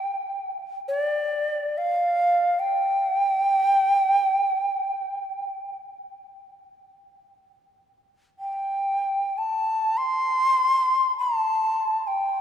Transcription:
Already playing: G5
0.88 C#5
1.00 D5
1.78 F5
2.59 G5
8.39 G5
9.38 A5
9.97 C6
11.18 A5
12.07 G5

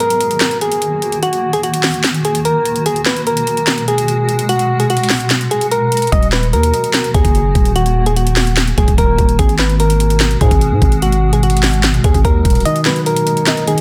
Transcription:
Already playing: D#3 A#3 F#4
0.00 A#4, closed hi-hat
0.10 closed hi-hat
0.21 closed hi-hat
0.31 closed hi-hat
0.40 snare, clap, closed hi-hat
0.51 closed hi-hat
0.61 G#4, closed hi-hat
0.72 closed hi-hat
0.82 closed hi-hat
1.02 closed hi-hat
1.12 closed hi-hat
1.23 F#4, closed hi-hat
1.33 closed hi-hat
1.53 G#4, closed hi-hat
1.63 F#4, closed hi-hat
1.74 closed hi-hat
1.83 snare, clap, open hi-hat
1.94 closed hi-hat
2.04 snare, clap, closed hi-hat
2.14 closed hi-hat
2.25 G#4, closed hi-hat
2.35 closed hi-hat
2.45 A#4, closed hi-hat
2.65 closed hi-hat
2.76 closed hi-hat
2.86 B2 G#3 G#4, closed hi-hat
2.96 closed hi-hat
3.06 B4, snare, clap
3.16 closed hi-hat
3.27 A#4, closed hi-hat
3.37 closed hi-hat
3.47 closed hi-hat
3.57 closed hi-hat
3.67 snare, clap, closed hi-hat
3.78 closed hi-hat
3.88 G#4, closed hi-hat
3.98 closed hi-hat
4.08 closed hi-hat
4.29 closed hi-hat
4.39 closed hi-hat
4.49 F#4, closed hi-hat
4.59 closed hi-hat
4.80 G#4, closed hi-hat
4.90 F#4, closed hi-hat
4.97 closed hi-hat
5.03 closed hi-hat
5.10 snare, clap, open hi-hat
5.20 closed hi-hat
5.30 snare, clap, closed hi-hat
5.41 closed hi-hat
5.51 G#4, closed hi-hat
5.61 closed hi-hat
5.71 A#4, closed hi-hat
5.92 closed hi-hat
5.97 closed hi-hat
6.02 closed hi-hat
6.07 closed hi-hat
6.12 D#1 D#3 A#3 D#5, kick, closed hi-hat
6.23 closed hi-hat
6.32 B4, snare, clap
6.43 closed hi-hat
6.53 D#2 A#4, closed hi-hat
6.63 closed hi-hat
6.74 closed hi-hat
6.84 closed hi-hat
6.94 snare, clap, closed hi-hat
7.04 closed hi-hat
7.14 D#2 G#4, kick, closed hi-hat
7.25 F#1, kick, closed hi-hat
7.35 closed hi-hat
7.55 D#1, kick, closed hi-hat
7.65 closed hi-hat
7.76 F#4, closed hi-hat
7.86 closed hi-hat
8.06 G#4, closed hi-hat
8.16 F#4, closed hi-hat
8.27 closed hi-hat
8.36 snare, clap, open hi-hat
8.47 closed hi-hat
8.57 snare, clap, closed hi-hat
8.67 closed hi-hat
8.78 D#1 G#4, kick, closed hi-hat
8.88 D#1, kick, closed hi-hat
8.98 D#1 A#4, kick, closed hi-hat
9.18 D#1, kick, closed hi-hat
9.29 closed hi-hat
9.39 G#1 B2 G#3 F#4 G#4, kick, closed hi-hat
9.49 closed hi-hat
9.59 B4, snare, clap
9.70 closed hi-hat
9.80 A#4, closed hi-hat
9.90 closed hi-hat
10.00 closed hi-hat
10.10 closed hi-hat
10.20 snare, clap, closed hi-hat
10.31 closed hi-hat
10.41 G#2 G#4, kick, closed hi-hat
10.51 G#1, kick, closed hi-hat
10.61 closed hi-hat
10.72 G#2
10.82 G#1, kick, closed hi-hat
10.92 closed hi-hat
11.02 F#4, closed hi-hat
11.12 closed hi-hat
11.33 G#4, closed hi-hat
11.43 F#4, closed hi-hat
11.50 closed hi-hat
11.57 closed hi-hat
11.63 snare, clap, open hi-hat
11.74 closed hi-hat
11.83 snare, clap, closed hi-hat
11.94 closed hi-hat
12.04 D#2 G#4, kick, closed hi-hat
12.14 G#1, kick, closed hi-hat
12.25 D#2 A#4, kick, closed hi-hat
12.45 D#1, kick, closed hi-hat
12.50 closed hi-hat
12.55 closed hi-hat
12.60 closed hi-hat
12.65 D#3 A#3 D#5, closed hi-hat
12.76 closed hi-hat
12.85 F#3 B4, snare, clap
12.96 closed hi-hat
13.06 A#4, closed hi-hat
13.16 closed hi-hat
13.27 closed hi-hat
13.37 closed hi-hat
13.47 D#5, snare, clap, closed hi-hat
13.57 closed hi-hat
13.67 D#3 G#4, closed hi-hat
13.78 closed hi-hat

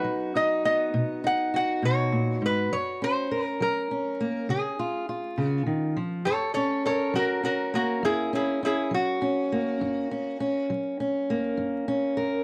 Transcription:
Already playing: B3 D#4 F#4 B4
0.04 F#3
0.35 D#4 D#5
0.65 B3 D#5
0.94 B2
1.24 D#4 F#5
1.54 F#4 F#5
1.82 B2 C#5
2.12 A#2
2.42 G#2
2.46 B4
2.73 F#2 C#5
3.02 C#4 C5
3.31 A#4
3.46 A#4
3.60 F#3 A#4
3.91 C#4
4.20 A#3
4.49 C#3 G#4
4.79 F4
5.09 F4
5.38 C#3
5.46 F#4
5.66 D#3
5.97 F3
6.25 F#2 A4 C#5
6.54 C#4 A4 C#5
6.85 A4 A#4 C#5
7.14 F#3 F#4 A#4
7.43 C#4 F#4 A#4
7.74 A#3 F#4 A#4
8.03 F#2 E4 G#4
8.33 C#4 E4 G#4
8.63 C#4 E4 G#4
8.91 F#3 F#4
9.22 C#4
9.52 A#3
9.81 F#2
10.11 C#4
10.40 C#4
10.70 F#3
11.00 C#4
11.30 A#3
11.57 F#2
11.88 C#4
12.17 A#4

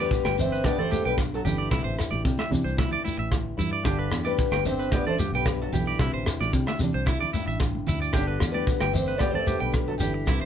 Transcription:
Already playing: G2 D3 B3 D4
0.00 G3 G4 B4
0.11 B3, kick, shekere
0.25 G1 G5, cross-stick, high conga
0.38 D3 C4 D4 C5 E5, closed hi-hat, low conga, shekere
0.52 B4, shekere
0.64 B3 D4 G4 B4 D5, kick, cross-stick, high conga, shekere
0.78 A3 A4 C5 D5, low conga
0.91 G2 B3 G4, closed hi-hat, high conga, shekere
1.05 B1 G3 G4 B4 G5
1.18 kick, cross-stick, shekere
1.34 F#3 F#4 A4
1.45 G1 D4 E4 G4, closed hi-hat, low conga, shekere
1.50 E3
1.58 D5
1.71 C2 C3 E4, kick, cross-stick, shekere
1.84 A1 C5
1.99 cross-stick, closed hi-hat, shekere
2.11 A1 D5, high conga
2.25 C3 G3, kick, shekere
2.38 E5, cross-stick, high conga
2.50 C3 E3 D4, closed hi-hat, low conga, shekere
2.64 C2 C5, shekere
2.77 E4, kick, cross-stick, high conga, shekere
2.91 D5, low conga
3.03 G3 E4, muted nylon-string guitar stroke, closed hi-hat, high conga
3.07 shekere
3.18 A1 E5
3.32 kick, cross-stick, shekere
3.57 G2 E4, closed hi-hat, low conga, shekere
3.73 D5
3.83 G1 G2 D4 G4, kick, cross-stick, shekere
3.87 D3 G4
3.99 B4
4.11 E2, cross-stick, closed hi-hat, shekere
4.25 G3 G4 B4 D5, high conga
4.39 B3, kick, shekere
4.52 G1 G5, cross-stick, high conga
4.64 D3 D4 C5 E5, closed hi-hat, low conga, shekere
4.68 C4
4.79 B4, shekere
4.92 B3 G4 B4 D5, muted nylon-string guitar stroke, kick, cross-stick, high conga, shekere
5.07 A3 A4 C5 D5, low conga
5.18 G2 B3 G4, closed hi-hat, high conga, shekere
5.33 B1 G3 G4 B4 G5
5.46 kick, cross-stick, shekere
5.61 F#3 F#4 A4
5.72 B1 E3 E4 G4, muted nylon-string guitar stroke, closed hi-hat, low conga, shekere
5.87 D5
5.99 C2 C3 E4, kick, cross-stick, shekere
6.14 A1 C5
6.26 cross-stick, closed hi-hat, shekere
6.41 A1 D5, high conga, shekere
6.53 C3 G3, kick, shekere
6.67 E5, cross-stick, high conga
6.79 C3 D4, closed hi-hat, low conga, shekere
6.94 C2 C5
7.06 E4, kick, cross-stick, shekere
7.20 D5, low conga
7.33 G2 G3 E4, closed hi-hat, high conga, shekere
7.48 A1 E5, shekere
7.60 kick, cross-stick, shekere
7.75 high conga
7.87 D2 E4, closed hi-hat, low conga, shekere
8.02 D5, shekere
8.13 G1 D3 D4 G4, muted nylon-string guitar stroke, kick, cross-stick, shekere
8.17 B3 D4
8.27 B4
8.40 E2, cross-stick, closed hi-hat, shekere
8.52 G3 G4 B4 D5, high conga
8.67 kick, shekere
8.71 B3
8.80 G1 G5, cross-stick, high conga
8.93 D3 C4 D4 C5 E5, closed hi-hat, low conga, shekere
9.07 B4, shekere
9.17 B3 G4 B4 D5, kick, cross-stick, high conga, shekere
9.23 G4
9.31 A3 A4 C5, low conga
9.35 D5
9.47 G2 B3 G4, closed hi-hat, high conga, shekere
9.59 B1 G3 G4 B4 G5
9.73 kick, cross-stick, shekere
9.88 F#3 F#4 A4
9.98 G1 E3 D4 E4 G4, closed hi-hat, low conga, shekere
10.14 muted clean electric guitar stroke
10.27 C2 C3 E4, kick, cross-stick, shekere
10.41 C5

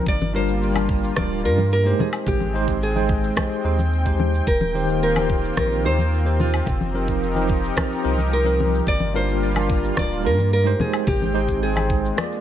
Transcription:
0.06 G1 G3 A#3 F4 D5, kick, shaker
0.21 high conga, shaker
0.33 G3 D4 F4 A#4 C5
0.48 shaker
0.62 shaker
0.74 G3 D4 F4 A#4, high conga, low woodblock, shaker
0.89 kick
1.04 shaker
1.16 D1 G3 D4 F4 A#4 D5, kick, cross-stick, high conga, shaker
1.31 shaker
1.44 G2 G3 D4 F4 A#4
1.58 high conga, shaker
1.72 A#4, shaker
1.84 G#3 D#4 G4 C5, shaker
1.99 G#3 C4 G#4 G5, high conga, low conga
2.13 low woodblock, shaker
2.27 G#1 G4, kick, low conga, shaker
2.40 high conga, shaker
2.54 G#3 D#4 G4 C5
2.68 kick, shaker
2.82 G#4, shaker
2.95 G#3 D#4 C5 G5, high conga, shaker
3.09 kick
3.24 shaker
3.36 G#3 D#4 G4 C5, kick, cross-stick, high conga, low woodblock, shaker
3.52 shaker
3.64 D#2 G#3 D#4 G4 C5
3.79 high conga, shaker
3.93 shaker
4.05 G#3 D#4 G4 C5, kick, shaker
4.20 high conga
4.34 shaker
4.47 D#1 D#3 A#3 C4 F4 A#4, kick, shaker
4.61 high conga, shaker
4.74 D#3 D#4 G4 C5
4.89 shaker
5.03 A#4, shaker
5.15 D#3 D#4 G4 C5, high conga, low woodblock, shaker
5.30 kick
5.44 shaker
5.57 A#1 D#3 D#4 G4 A#4 C5, kick, cross-stick, high conga, shaker
5.72 shaker
5.84 D#2 D#3 D#4 G4 C5
5.98 high conga, shaker
6.13 shaker
6.25 D#3 D#4 G4 C5, shaker
6.40 F4, high conga, low conga
6.54 low woodblock, shaker
6.66 F1 F3 D#4 G4 A#4, kick, low conga, shaker
6.81 high conga, shaker
6.94 F3 C4 D#4 A#4
7.08 kick, shaker
7.23 shaker
7.35 F3 C4 D#4 A#4, high conga, shaker
7.49 kick
7.64 shaker
7.76 F3 C4 D#4 A#4, kick, cross-stick, high conga, low woodblock, shaker
7.92 shaker
8.03 C2 F3 C4 D#4 A#4
8.18 high conga, shaker
8.33 A#4, shaker
8.44 F3 C4 D#4 A#4, shaker
8.60 high conga
8.74 shaker
8.87 G1 G3 A#3 F4 D5, kick, shaker
9.00 high conga, shaker
9.14 G3 D4 F4 A#4 C5
9.29 shaker
9.43 shaker
9.55 G3 D4 F4 A#4, high conga, low woodblock, shaker
9.70 kick
9.84 shaker
9.96 D1 G3 D4 F4 A#4 D5, kick, cross-stick, high conga, shaker
10.12 shaker
10.23 G2 G3 D4 F4 A#4
10.38 high conga, shaker
10.53 A#4, shaker
10.64 G#3 D#4 G4 C5, shaker
10.79 G#3 C4 G#4 G5, high conga, low conga
10.94 low woodblock, shaker
11.07 G#1 G4, kick, low conga, shaker
11.22 high conga, shaker
11.34 G#3 D#4 G4 C5
11.49 kick, shaker
11.63 G#4, shaker
11.75 G#3 D#4 C5 G5, high conga, low woodblock, shaker
11.90 kick
12.05 shaker
12.16 A#3 D4 F4 G#4 D5, cross-stick, high conga, low woodblock, shaker
12.32 shaker

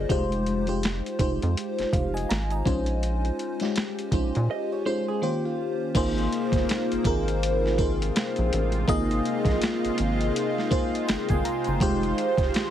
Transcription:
Already playing: A#3 D#4 F4 G#4 A#4 C5
0.09 F1 G#3 D#4 F4 G4 C5, kick, closed hi-hat
0.32 closed hi-hat
0.46 closed hi-hat
0.67 G#3 D#4 F4 G4 C5, closed hi-hat
0.83 finger snap, snare, closed hi-hat
1.06 closed hi-hat
1.19 F1 G#3 D#4 F4 G4 C5, kick, closed hi-hat
1.42 F2, closed hi-hat
1.57 closed hi-hat
1.78 F1, snare, closed hi-hat
1.93 F1 C5 F5, kick, closed hi-hat
2.14 D#5 G#5, closed hi-hat
2.29 G#1 F5 A#5, finger snap, snare, closed hi-hat
2.50 D#5 G#5, closed hi-hat
2.65 A#1 G#3 C#4 D#4 F4 C5, kick, closed hi-hat
2.86 closed hi-hat
3.03 closed hi-hat
3.25 closed hi-hat
3.39 closed hi-hat
3.60 G#3 C#4 D#4 F4 G4, snare, closed hi-hat
3.76 finger snap, snare, closed hi-hat
3.99 closed hi-hat
4.12 A#1 G#3 C#4 D#4 F4 C5, kick, closed hi-hat
4.35 A#2, closed hi-hat
4.51 D#5
4.72 C#5
4.85 G#3 C#4 D#4 F4 C5
5.08 G#4
5.22 D#3 A#3 C#4 F4 G4 C5
5.45 F4
5.94 G#1 C3 G#3 A#3 D#4 F4 G#4 C5, kick, closed hi-hat, crash
6.18 closed hi-hat
6.32 closed hi-hat
6.52 G1, kick, closed hi-hat
6.56 snare
6.69 finger snap, snare, closed hi-hat
6.92 G#1, closed hi-hat
7.04 G#1 A#3 D#4 F4 G#4 A#4, kick, closed hi-hat
7.28 closed hi-hat
7.43 closed hi-hat
7.66 snare
7.78 A#3 D#4 F4 G#4 C5, kick, closed hi-hat
8.02 closed hi-hat
8.16 finger snap, snare, closed hi-hat
8.36 A#1, closed hi-hat
8.53 A1, closed hi-hat
8.72 closed hi-hat
8.86 G#1 A#3 D#4 F4 G#4 C5 D#5, kick, closed hi-hat
9.11 closed hi-hat
9.25 closed hi-hat
9.45 A#1, kick, closed hi-hat
9.49 snare
9.62 finger snap, snare, closed hi-hat
9.85 G#1, closed hi-hat
9.98 G#1, closed hi-hat
10.21 closed hi-hat
10.36 closed hi-hat
10.58 snare
10.70 A#3 D#4 F4 G#4 C5, kick, closed hi-hat
10.95 closed hi-hat
11.08 G1 C5 G5, finger snap, snare, closed hi-hat
11.29 G1 D#5 G#5, kick, closed hi-hat
11.45 F5 A#5, closed hi-hat
11.64 F#1 G5 C6, closed hi-hat
11.80 F1 D#3 G#3 D#4 F4 G4 C5, kick, closed hi-hat
12.03 closed hi-hat
12.18 closed hi-hat
12.37 F1, kick, closed hi-hat
12.42 snare
12.54 finger snap, snare, closed hi-hat

